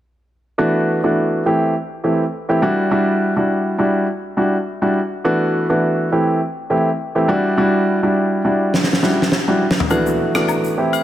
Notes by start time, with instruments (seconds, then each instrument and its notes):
0.58 grand piano E3 A3 B3 D4 F#4
1.03 grand piano E3 A3 B3 D4 F#4
1.46 grand piano E3 A3 C4 E4 G4
2.04 grand piano E3 A3 C4 E4 G4
2.49 grand piano E3 A3 C4 E4 G4
2.62 grand piano G3 D4 E4 F#4
2.91 grand piano G3 D4 E4 F#4
3.36 grand piano G3 D4 E4 F#4
3.78 grand piano G3 D4 E4 F#4
4.37 grand piano G3 D4 E4 F#4
4.82 grand piano G3 D4 E4 F#4
5.24 grand piano E3 A3 B3 D4 F#4
5.69 grand piano E3 A3 B3 D4 F#4
6.12 grand piano E3 A3 C4 E4 G4
6.70 grand piano E3 A3 C4 E4 G4
7.15 grand piano E3 A3 C4 E4 G4
7.28 grand piano G3 D4 E4 F#4
7.57 grand piano G3 D4 E4 F#4
8.03 grand piano G3 D4 E4 F#4
8.45 grand piano G3 D4 E4 F#4
8.74 snare
8.83 snare
8.93 snare
9.03 grand piano G3 D4 E4 F#4, snare
9.22 snare
9.32 snare
9.48 grand piano G3 D4 E4 F#4
9.71 snare
9.80 floor tom
9.90 grand piano E3 A3 B3 D4 F#4, high agogo, shaker
10.06 shaker
10.35 grand piano E3 A3 B3 D4 F#4, cross-stick, high agogo, shaker
10.48 low woodblock, shaker
10.64 shaker
10.77 grand piano E3 A3 C4 E4 G4
10.93 high agogo, shaker